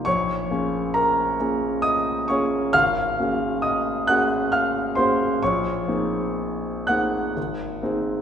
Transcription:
\new Staff \with { instrumentName = "Grand piano" } { \time 3/4 \key bes \minor \tempo 4 = 67 << { <des'' des'''>4 <bes' bes''>4 <ees'' ees'''>8 <des'' des'''>8 | <f'' f'''>4 <ees'' ees'''>8 <ges'' ges'''>8 <f'' f'''>8 <c'' c'''>8 | <des'' des'''>4. <ges'' ges'''>4. | } \\ { bes,,8 <bes des' f' aes'>4 <bes des' f' aes'>4 <bes des' f' aes'>8 | aes,,8 <bes des' ges' aes'>4 <bes des' ges' aes'>4 <bes des' ges' aes'>8 | bes,,8 <bes c' ees' aes'>4 <bes c' ees' aes'>8 aes,,8 <bes c' ees' aes'>8 | } >> }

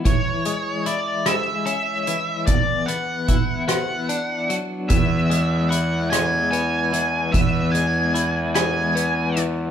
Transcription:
<<
  \new Staff \with { instrumentName = "Lead electric guitar" } { \time 6/8 \key e \mixolydian \tempo 4. = 49 cis''4 d''8 e''8 e''4 | d''8 fis''4 fis''4 r8 | e''4 fis''8 gis''8 gis''4 | e''8 gis''4 gis''4 r8 | }
  \new Staff \with { instrumentName = "Pedal steel guitar" } { \time 6/8 \key e \mixolydian << { r2. | r2. | b'2. | b'2. | } \\ { r2. | r2. | <e e' gis'>2.~ | <e e' gis'>2. | } >> }
  \new Staff \with { instrumentName = "Clean electric guitar" } { \clef bass \time 6/8 \key e \mixolydian e8 gis8 e'8 gis8 cis'8 e8 | e,8 b8 e'8 b8 d'8 fis8 | e,8 gis8 e'8 gis8 b8 e8 | e,8 gis8 e'8 gis8 b8 e8 | }
  \new Staff \with { instrumentName = "Fingered electric bass" } { \clef bass \time 6/8 \key e \mixolydian r2. | r2. | e,2. | e,2. | }
  \new DrumStaff \with { instrumentName = "Drums" } \drummode { \time 6/8 <hh bd>8 hh8 hh8 <hh ss>8 hh8 hh8 | <hh bd>8 hh8 <hh bd>8 <hh ss>8 hh8 hh8 | <hh bd>8 hh8 hh8 <hh ss>8 hh8 hh8 | <hh bd>8 hh8 hh8 <hh ss>8 hh8 hh8 | }
>>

